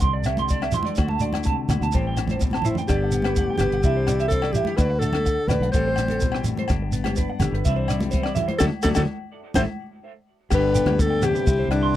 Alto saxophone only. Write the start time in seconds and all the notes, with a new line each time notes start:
2.65 E4
2.88 G4
3.58 G4
4.28 A4
4.52 G4
4.77 B4
4.99 A4
5.48 B4
5.72 C5
8.59 A4
8.83 A4
8.96 A4
9.56 C5
10.55 B4
11.01 A4
11.25 G4
11.71 D4